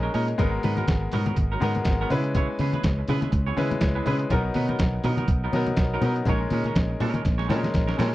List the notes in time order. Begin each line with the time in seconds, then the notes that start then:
Already playing: G#3 C#4 D#4 A#4 G#5
0.03 G#3 C#4 D#4 A#4
0.14 A#2 G#3 C#4 D#4 A#4 D#5, open hi-hat
0.28 muted clean electric guitar stroke, closed hi-hat
0.38 G#1 F#3 G#3 B3 D#4 F#4 A#4, kick, closed hi-hat, muted conga, low conga
0.53 muted clean electric guitar stroke
0.63 G#2 F#3 B3 D#4 B4, open hi-hat, muted conga, high conga
0.77 F#3 B3 D#4 A#4, closed hi-hat, high conga
0.88 G#1, muted clean electric guitar stroke, kick, snare, closed hi-hat
1.01 muted clean electric guitar stroke
1.12 G#2 F#3 B3 D#4 A#4, open hi-hat, muted conga, low conga
1.26 F#3 B3 D#4 A#4, closed hi-hat, high conga
1.36 G#1, muted clean electric guitar stroke, kick, closed hi-hat, muted conga
1.52 F#3 B3 D#4 A#4
1.60 G#2 F#3 G#3 B3 D#4 F#4 A#4, open hi-hat, muted conga, high conga
1.75 muted clean electric guitar stroke, closed hi-hat, high conga
1.85 G#1, muted clean electric guitar stroke, kick, snare, closed hi-hat, muted conga
2.01 F#3 B3 D#4 A#4
2.10 C#3 G#3 B3 C#4 E4 G#4 B4, open hi-hat, muted conga, low conga
2.24 muted clean electric guitar stroke, closed hi-hat
2.35 B3 E4 G#4 C#5, kick, closed hi-hat, muted conga, low conga
2.50 muted clean electric guitar stroke
2.59 C#3 B3 E4 G#4 B4, open hi-hat, muted conga, high conga
2.73 B3 E4 G#4 B4, closed hi-hat, high conga
2.83 C#2, muted clean electric guitar stroke, kick, snare, closed hi-hat, muted conga
2.99 muted clean electric guitar stroke
3.08 C#3 B3 E4 G#4 B4, open hi-hat, low conga
3.22 B3 E4 G#4 B4, closed hi-hat, high conga
3.32 C#2, muted clean electric guitar stroke, kick, closed hi-hat, muted conga
3.46 B3 E4 G#4 C#5
3.57 C#3 G#3 B3 C#4 E4 G#4 B4, open hi-hat, high conga
3.71 muted clean electric guitar stroke, closed hi-hat, high conga
3.81 C#2, muted clean electric guitar stroke, kick, snare, closed hi-hat
3.95 B3 E4 G#4 B4
4.06 C#3 G#3 B3 C#4 E4 G#4 B4, open hi-hat, low conga
4.19 muted clean electric guitar stroke, closed hi-hat
4.30 B1 F#3 B3 D#4 A#4, kick, closed hi-hat, low conga
4.45 muted clean electric guitar stroke
4.54 B2 F#3 B3 D#4 B4, open hi-hat, high conga
4.69 F#3 B3 D#4 A#4, closed hi-hat, high conga
4.79 B1, muted clean electric guitar stroke, kick, snare, closed hi-hat, muted conga
4.93 muted clean electric guitar stroke
5.04 B2 F#3 B3 D#4 A#4, open hi-hat, muted conga, low conga
5.17 F#3 B3 D#4 A#4, closed hi-hat, high conga
5.28 B1, muted clean electric guitar stroke, kick, closed hi-hat
5.44 F#3 B3 D#4 A#4
5.52 B2 F#3 B3 D#4 A#4, open hi-hat, muted conga, high conga
5.67 muted clean electric guitar stroke, closed hi-hat, high conga
5.77 B1, muted clean electric guitar stroke, kick, snare, closed hi-hat
5.94 F#3 B3 D#4 A#4
6.01 B2 F#3 B3 D#4 A#4, open hi-hat, low conga
6.16 muted clean electric guitar stroke, closed hi-hat
6.25 A#1 G#3 C#4 D#4 A#4, kick, closed hi-hat, muted conga, low conga
6.30 C#5
6.42 muted clean electric guitar stroke
6.50 A#2 G#3 C#4 D#4 A#4, open hi-hat, muted conga, high conga
6.64 G#3 C#4 D#4 A#4, closed hi-hat, high conga
6.75 A#1, muted clean electric guitar stroke, kick, snare, closed hi-hat
6.90 muted clean electric guitar stroke
7.00 A#2 G#3 C#4 D#4 A#4, open hi-hat, muted conga, low conga
7.14 G#3 C#4 D#4 A#4, closed hi-hat, high conga
7.24 A#1, muted clean electric guitar stroke, kick, snare, closed hi-hat, muted conga
7.38 G#3 C#4 D#4 C#5, snare
7.49 A#2 F#3 G#3 C#4 D#4 A#4, snare, open hi-hat, muted conga, high conga
7.56 G#3
7.63 muted clean electric guitar stroke, snare, closed hi-hat, high conga
7.73 A#1, muted clean electric guitar stroke, kick, snare, closed hi-hat
7.87 G#3 C#4 D#4 A#4, snare
7.98 A#2 G#3 C#4 D#4 A#4, snare, open hi-hat, low conga
8.11 muted clean electric guitar stroke